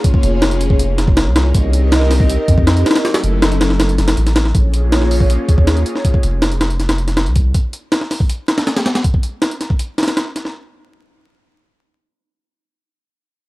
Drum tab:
HH |x---x---x-x-x---x---x---x---x---|x---x---x---o---x---x---x-x-xxx-|x-x-x---x-x-x---x-x-x-x-x-x-x---|x---x---x---o---x---x---x-x-x---|
SD |--------o-----------o---o---o---|--------o-o-o-----------o---ooo-|o-o-----o---o-o-o---o-o---o-o-o-|--------o-o-------------o-----o-|
BD |o-o-----------o-------o---------|o-------------o-----o-o---------|--------------------------------|o-------------o-----o-o---------|

HH |x---x---x-x-x-x-x-x-x-x-x-x-x---|x---x---x---o---x---x-x-x-x-x-x-|x---x---x-x-x---x---xxx-x---x---|--------------------------------|
SD |--------o---o---o-o---o-o-------|--------o-o-o-------o-o-o-o-o-o-|--------o---o-------ooo-o---o-o-|--------------------------------|
BD |o-o-------------------------o---|o-------------o-----------------|o-o-----------o-----------------|--------------------------------|

HH |--------------------------------|
SD |--------------------------------|
BD |--------------------------------|